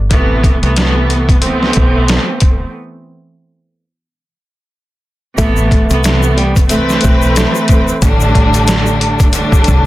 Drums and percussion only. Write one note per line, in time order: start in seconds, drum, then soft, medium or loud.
0.11 kick loud
0.11 closed hi-hat loud
0.44 kick loud
0.44 closed hi-hat medium
0.63 closed hi-hat soft
0.76 snare loud
0.76 closed hi-hat medium
1.10 closed hi-hat medium
1.29 kick medium
1.29 closed hi-hat medium
1.42 closed hi-hat medium
1.63 snare soft
1.73 kick medium
1.73 closed hi-hat medium
2.08 snare loud
2.08 closed hi-hat medium
2.40 kick medium
2.40 closed hi-hat medium
5.38 kick loud
5.38 closed hi-hat loud
5.38 shaker medium
5.57 shaker medium
5.71 kick loud
5.71 closed hi-hat medium
5.90 closed hi-hat soft
5.90 shaker medium
6.04 snare loud
6.04 closed hi-hat loud
6.04 shaker medium
6.23 shaker soft
6.38 closed hi-hat medium
6.56 kick medium
6.56 closed hi-hat medium
6.56 shaker soft
6.69 closed hi-hat medium
6.69 shaker medium
6.89 snare soft
6.89 shaker soft
7.01 kick medium
7.01 closed hi-hat medium
7.01 shaker medium
7.22 shaker medium
7.36 snare loud
7.36 closed hi-hat medium
7.36 shaker medium
7.55 shaker medium
7.68 kick medium
7.68 closed hi-hat medium
7.68 shaker soft
7.88 shaker soft
8.02 kick loud
8.02 closed hi-hat medium
8.02 shaker medium
8.20 shaker medium
8.35 kick loud
8.35 closed hi-hat medium
8.54 closed hi-hat medium
8.54 shaker medium
8.68 snare loud
8.68 closed hi-hat loud
8.68 shaker medium
8.86 shaker soft
9.01 closed hi-hat medium
9.20 kick medium
9.20 closed hi-hat medium
9.20 shaker soft
9.33 closed hi-hat medium
9.33 shaker medium
9.52 kick loud
9.52 shaker soft
9.64 kick medium
9.64 closed hi-hat medium
9.64 shaker medium